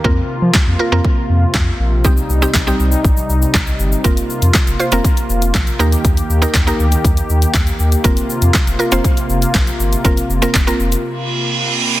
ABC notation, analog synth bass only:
X:1
M:4/4
L:1/16
Q:1/4=120
K:Fmix
V:1 name="Analog synth bass" clef=bass
F,,2 z F, z F,, z F,, z2 F,,2 F,,2 B,,,2 | C,,2 C,,2 C,,2 C,,2 B,,,2 C,,2 C,,2 G,,,2 | F,,,2 z F,, z F,,, z F,,, z2 F,,,2 B,,,2 E,,2 | E,,2 E,,2 E,,2 D,,2 E,,2 E,,2 E,,2 E,,2 |
F,,,2 z F,, z F,,, z F,,, z2 F,,,2 B,,,2 G,,,2 | F,,,2 F,,,2 F,,,2 F,,,2 z8 |]